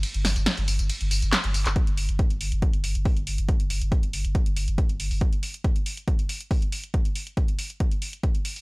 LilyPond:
<<
  \new Staff \with { instrumentName = "Sub bass" } { \clef bass \time 4/4 \key c \dorian \tempo 4 = 139 r16 g,,16 g,,16 g,,16 r16 g,,16 g,,16 g,,16 r16 g,,16 g,,16 g,,16 r16 g,,16 g,,16 g,,16 | r16 g,,16 g,,16 g,,16 r16 g,,16 g,,16 g,,16 r16 g,,16 g,,16 g,,16 r16 g,,16 g,,16 g,,16 | r16 g,,16 g,,16 g,,16 r16 g,,16 g,,16 g,,16 r16 g,,16 g,,16 g,,16 r16 g,,16 g,,16 g,,16 | r1 |
r1 | }
  \new DrumStaff \with { instrumentName = "Drums" } \drummode { \time 4/4 <hh cymr tamb>16 hh16 <hho sn tamb>16 <hh tamb>16 <hh cymr sn tamb>16 hh16 <hho tamb>16 <hh tamb>16 <hh cymr tamb>16 hh16 <hho tamb>16 <hh tamb>16 <hc hh cymr sn tamb>16 hh16 <hho tamb>16 <hc hh tamb>16 | <hh bd>16 hh16 hho16 hh16 <hh bd>16 hh16 hho16 hh16 <hh bd>16 hh16 hho16 hh16 <hho bd>16 hh16 hho16 hh16 | <hh bd>16 hh16 hho16 hh16 <hh bd>16 hh16 hho16 hh16 <hh bd>16 hh16 hho16 hh16 <hh bd>16 hh16 hho16 hho16 | <hh bd>16 hh16 hho16 hh16 <hh bd>16 hh16 hho16 hh16 <hh bd>16 hh16 hho16 hh16 <hho bd>16 hh16 hho16 hh16 |
<hh bd>16 hh16 hho16 hh16 <hh bd>16 hh16 hho16 hh16 <hh bd>16 hh16 hho16 hh16 <hh bd>16 hh16 hho16 hho16 | }
>>